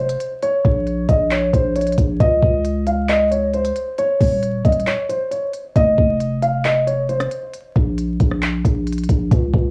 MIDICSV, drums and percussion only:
0, 0, Header, 1, 2, 480
1, 0, Start_track
1, 0, Tempo, 444444
1, 458, Time_signature, 4, 2, 24, 8
1, 10484, End_track
2, 0, Start_track
2, 0, Title_t, "Drums"
2, 98, Note_on_c, 9, 42, 78
2, 206, Note_off_c, 9, 42, 0
2, 217, Note_on_c, 9, 42, 84
2, 325, Note_off_c, 9, 42, 0
2, 458, Note_on_c, 9, 42, 66
2, 566, Note_off_c, 9, 42, 0
2, 699, Note_on_c, 9, 36, 99
2, 807, Note_off_c, 9, 36, 0
2, 938, Note_on_c, 9, 42, 73
2, 1046, Note_off_c, 9, 42, 0
2, 1176, Note_on_c, 9, 42, 63
2, 1177, Note_on_c, 9, 36, 98
2, 1284, Note_off_c, 9, 42, 0
2, 1285, Note_off_c, 9, 36, 0
2, 1418, Note_on_c, 9, 39, 119
2, 1419, Note_on_c, 9, 42, 76
2, 1526, Note_off_c, 9, 39, 0
2, 1527, Note_off_c, 9, 42, 0
2, 1658, Note_on_c, 9, 36, 85
2, 1662, Note_on_c, 9, 42, 70
2, 1766, Note_off_c, 9, 36, 0
2, 1770, Note_off_c, 9, 42, 0
2, 1898, Note_on_c, 9, 42, 61
2, 1958, Note_off_c, 9, 42, 0
2, 1958, Note_on_c, 9, 42, 61
2, 2018, Note_off_c, 9, 42, 0
2, 2018, Note_on_c, 9, 42, 66
2, 2078, Note_off_c, 9, 42, 0
2, 2078, Note_on_c, 9, 42, 65
2, 2138, Note_off_c, 9, 42, 0
2, 2138, Note_on_c, 9, 36, 89
2, 2138, Note_on_c, 9, 42, 84
2, 2246, Note_off_c, 9, 36, 0
2, 2246, Note_off_c, 9, 42, 0
2, 2378, Note_on_c, 9, 36, 107
2, 2378, Note_on_c, 9, 42, 66
2, 2486, Note_off_c, 9, 36, 0
2, 2486, Note_off_c, 9, 42, 0
2, 2619, Note_on_c, 9, 36, 97
2, 2727, Note_off_c, 9, 36, 0
2, 2858, Note_on_c, 9, 42, 75
2, 2966, Note_off_c, 9, 42, 0
2, 3096, Note_on_c, 9, 42, 67
2, 3204, Note_off_c, 9, 42, 0
2, 3338, Note_on_c, 9, 39, 116
2, 3340, Note_on_c, 9, 42, 73
2, 3446, Note_off_c, 9, 39, 0
2, 3448, Note_off_c, 9, 42, 0
2, 3583, Note_on_c, 9, 42, 74
2, 3691, Note_off_c, 9, 42, 0
2, 3818, Note_on_c, 9, 42, 45
2, 3926, Note_off_c, 9, 42, 0
2, 3938, Note_on_c, 9, 42, 80
2, 4046, Note_off_c, 9, 42, 0
2, 4058, Note_on_c, 9, 42, 83
2, 4166, Note_off_c, 9, 42, 0
2, 4299, Note_on_c, 9, 42, 66
2, 4407, Note_off_c, 9, 42, 0
2, 4539, Note_on_c, 9, 36, 95
2, 4540, Note_on_c, 9, 46, 77
2, 4647, Note_off_c, 9, 36, 0
2, 4648, Note_off_c, 9, 46, 0
2, 4779, Note_on_c, 9, 42, 73
2, 4887, Note_off_c, 9, 42, 0
2, 5017, Note_on_c, 9, 36, 97
2, 5018, Note_on_c, 9, 42, 57
2, 5099, Note_off_c, 9, 42, 0
2, 5099, Note_on_c, 9, 42, 53
2, 5125, Note_off_c, 9, 36, 0
2, 5179, Note_off_c, 9, 42, 0
2, 5179, Note_on_c, 9, 42, 54
2, 5258, Note_on_c, 9, 39, 120
2, 5260, Note_off_c, 9, 42, 0
2, 5260, Note_on_c, 9, 42, 74
2, 5366, Note_off_c, 9, 39, 0
2, 5368, Note_off_c, 9, 42, 0
2, 5503, Note_on_c, 9, 42, 71
2, 5611, Note_off_c, 9, 42, 0
2, 5741, Note_on_c, 9, 42, 75
2, 5849, Note_off_c, 9, 42, 0
2, 5978, Note_on_c, 9, 42, 86
2, 6086, Note_off_c, 9, 42, 0
2, 6218, Note_on_c, 9, 36, 107
2, 6218, Note_on_c, 9, 42, 68
2, 6326, Note_off_c, 9, 36, 0
2, 6326, Note_off_c, 9, 42, 0
2, 6459, Note_on_c, 9, 36, 94
2, 6567, Note_off_c, 9, 36, 0
2, 6698, Note_on_c, 9, 42, 72
2, 6806, Note_off_c, 9, 42, 0
2, 6936, Note_on_c, 9, 42, 65
2, 7044, Note_off_c, 9, 42, 0
2, 7178, Note_on_c, 9, 39, 117
2, 7180, Note_on_c, 9, 42, 70
2, 7286, Note_off_c, 9, 39, 0
2, 7288, Note_off_c, 9, 42, 0
2, 7423, Note_on_c, 9, 42, 71
2, 7531, Note_off_c, 9, 42, 0
2, 7658, Note_on_c, 9, 42, 45
2, 7766, Note_off_c, 9, 42, 0
2, 7777, Note_on_c, 9, 37, 104
2, 7778, Note_on_c, 9, 42, 78
2, 7885, Note_off_c, 9, 37, 0
2, 7886, Note_off_c, 9, 42, 0
2, 7898, Note_on_c, 9, 42, 85
2, 8006, Note_off_c, 9, 42, 0
2, 8138, Note_on_c, 9, 42, 68
2, 8246, Note_off_c, 9, 42, 0
2, 8379, Note_on_c, 9, 36, 96
2, 8487, Note_off_c, 9, 36, 0
2, 8618, Note_on_c, 9, 42, 72
2, 8726, Note_off_c, 9, 42, 0
2, 8856, Note_on_c, 9, 42, 64
2, 8857, Note_on_c, 9, 36, 98
2, 8964, Note_off_c, 9, 42, 0
2, 8965, Note_off_c, 9, 36, 0
2, 8979, Note_on_c, 9, 37, 61
2, 9087, Note_off_c, 9, 37, 0
2, 9098, Note_on_c, 9, 39, 121
2, 9100, Note_on_c, 9, 42, 74
2, 9206, Note_off_c, 9, 39, 0
2, 9208, Note_off_c, 9, 42, 0
2, 9338, Note_on_c, 9, 36, 83
2, 9343, Note_on_c, 9, 42, 73
2, 9446, Note_off_c, 9, 36, 0
2, 9451, Note_off_c, 9, 42, 0
2, 9578, Note_on_c, 9, 42, 63
2, 9638, Note_off_c, 9, 42, 0
2, 9638, Note_on_c, 9, 42, 62
2, 9698, Note_off_c, 9, 42, 0
2, 9698, Note_on_c, 9, 42, 64
2, 9758, Note_off_c, 9, 42, 0
2, 9758, Note_on_c, 9, 42, 65
2, 9818, Note_off_c, 9, 42, 0
2, 9818, Note_on_c, 9, 36, 88
2, 9818, Note_on_c, 9, 42, 84
2, 9926, Note_off_c, 9, 36, 0
2, 9926, Note_off_c, 9, 42, 0
2, 10058, Note_on_c, 9, 36, 112
2, 10058, Note_on_c, 9, 42, 66
2, 10166, Note_off_c, 9, 36, 0
2, 10166, Note_off_c, 9, 42, 0
2, 10299, Note_on_c, 9, 36, 95
2, 10407, Note_off_c, 9, 36, 0
2, 10484, End_track
0, 0, End_of_file